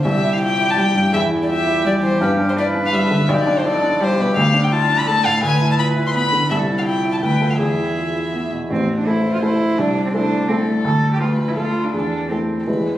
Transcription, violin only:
\new Staff \with { instrumentName = "Violin" } { \time 3/4 \key c \major \tempo 4 = 167 e''8. f''16 g''8. a''16 g''4 | e''8. d''16 e''4 d''8 c''8 | b'8. c''16 d''8. f''16 e''4 | d''8. c''16 d''4 c''8 b'8 |
\key a \minor f''8. g''16 a''8. b''16 a''8 f''8 | gis''8. a''16 b''8. c'''16 b''4 | e''8. f''16 g''8. a''16 g''8. f''16 | e''2~ e''8 r8 |
r4 c''2 | d''4 c''4 a'4~ | a'4 b'4 a'4 | a'4 g'8. a'16 b'8. r16 | }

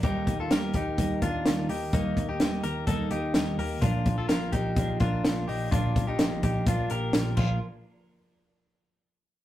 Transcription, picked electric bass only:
\new Staff \with { instrumentName = "Picked electric bass" } { \clef bass \time 4/4 \key bes \major \tempo 4 = 127 ees,8 ees,8 ees,8 ees,8 ees,8 ees,8 ees,8 ees,8 | ees,8 ees,8 ees,8 ees,8 ees,8 ees,8 ees,8 ees,8 | bes,,8 bes,,8 bes,,8 bes,,8 bes,,8 bes,,8 bes,,8 bes,,8 | bes,,8 bes,,8 bes,,8 bes,,8 bes,,8 bes,,8 bes,,8 bes,,8 |
r1 | }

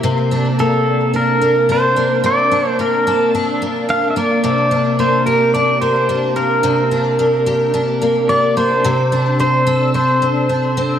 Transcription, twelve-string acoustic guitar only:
\new Staff \with { instrumentName = "Twelve-string acoustic guitar" } { \time 4/4 \key bes \lydian \tempo 4 = 109 c8 d'8 bes4 d'8 bes8 d'8 bes8 | c8 d'8 bes8 a'8 d'8 bes8 d'8 bes8 | c8 d'8 bes8 g'8 d'8 bes8 d'8 bes8 | c8 d'8 bes8 g'8 d'8 bes8 d'8 bes8 |
c8 d'8 c'8 a'8 d'8 c'8 d'8 c'8 | }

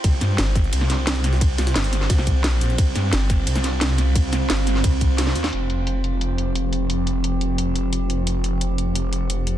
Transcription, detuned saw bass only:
\new Staff \with { instrumentName = "Detuned saw bass" } { \clef bass \time 4/4 \key c \phrygian \tempo 4 = 175 c,8 g,8 g,,4 c,2~ | c,8 c,8 g,,4 c,4. bes,,8 | c,8 g,8 g,,4 c,2~ | c,8 c,8 g,,4 c,4. ees,8 |
f,,1~ | f,,1~ | f,,1 | }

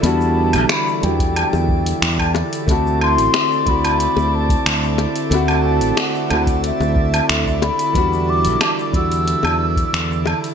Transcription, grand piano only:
\new Staff \with { instrumentName = "Grand piano" } { \time 4/4 \key e \minor \tempo 4 = 91 <g b d' fis'>4. <fis g b d'>2~ <fis g b d'>8 | <a c' e' fis'>4. <a c' e' fis'>2~ <a c' e' fis'>8 | <a c' e' fis'>4. <a c' e' fis'>2~ <a c' e' fis'>8 | <g b d' fis'>4. <g b d' fis'>2~ <g b d' fis'>8 | }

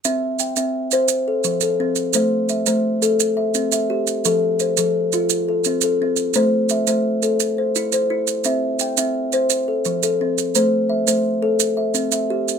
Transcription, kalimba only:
\new Staff \with { instrumentName = "Kalimba" } { \time 12/8 \key c \major \tempo 4. = 114 << { e''4 g''8 e''4. r8 a'4 a'4. | c''4 e''8 c''4. r8 e''4 e''4. | a'4 c''8 a'4. r8 a'4 a'4. | c''4 e''8 c''4. r8 c''4 c''4. |
e''4 g''8 e''4. r8 a'4 a'4. | c''4 e''8 c''4. r8 e''4 e''4. | } \\ { c'4 r8 c'4 c''8 r4 f4 c'4 | a4 r8 a4 a'8 r4 c'4 g'4 | f4 r8 f4 f'4 r8 c'4 c'4 | a4 r8 a4 a'4 r8 e'4 e'4 |
c'4 r8 c'4 c''8 r4 f4 c'4 | a4 r8 a4 a'8 r4 c'4 g'4 | } >> }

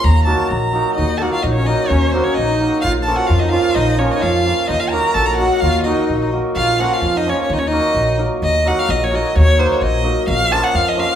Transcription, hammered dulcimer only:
\new Staff \with { instrumentName = "Hammered dulcimer" } { \time 2/4 \key ees \minor \tempo 4 = 129 r8 <ges bes ees' ges' bes'>8 r8 <ges bes ees' ges' bes'>8 | r8 <ges bes ees' ges' bes'>8 r8 <ges bes ees' ges' bes'>8 | r8 <ges bes ees' ges' bes'>8 r8 <ges bes ees' ges' bes'>8 | r8 <f bes des' f' bes'>8 r8 <f bes des' f' bes'>8 |
r8 <f bes des' f' bes'>8 r8 <f bes des' f' bes'>8 | r8 <ges bes ees' ges' bes'>8 r8 <ges bes ees' ges' bes'>8 | r8 <ges bes ees' ges' bes'>8 r8 <ges bes ees' ges' bes'>8 | r8 <f bes des' f' bes'>8 r8 <f bes des' f' bes'>8 |
r8 <ges bes ees' ges' bes'>8 r8 <ges bes ees' ges' bes'>8 | r8 <ges bes ees' ges' bes'>8 r8 <ges bes ees' ges' bes'>8 | r8 <ges bes ees' ges' bes'>8 r8 <ges bes ees' ges' bes'>8 | r8 <f bes des' f' bes'>8 r8 <f bes des' f' bes'>8 | }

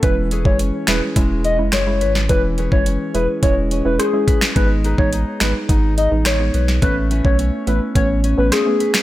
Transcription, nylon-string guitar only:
\new Staff \with { instrumentName = "Nylon-string guitar" } { \time 4/4 \key e \major \tempo 4 = 106 <e b'>8 <cis' gis' b'>8 cis'8 gis'8 gis8 cis'8 gis'8 b'8 | <e b'>8 <cis' gis' b'>8 cis'8 gis'8 gis8 cis'8 gis'8 b'8 | <gis b'>8 <dis' gis' b'>8 dis'8 gis'8 dis'8 dis'8 gis'8 b'8 | <a b'>8 <cis' e' b'>8 cis'8 e'8 cis'8 cis'8 e'8 b'8 | }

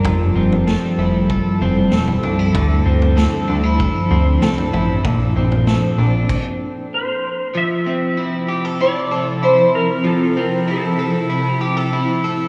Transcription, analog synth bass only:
\new Staff \with { instrumentName = "Analog synth bass" } { \clef bass \time 4/4 \key f \major \tempo 4 = 96 f,,8 f,,8. r16 f,,8. r16 f,,8 e,,8 c,8 | d,8 d,8. r16 d,8. r16 d,8 c,8 a,,8 | bes,,8 bes,,8. r16 bes,,8 r2 | r1 |
r1 | }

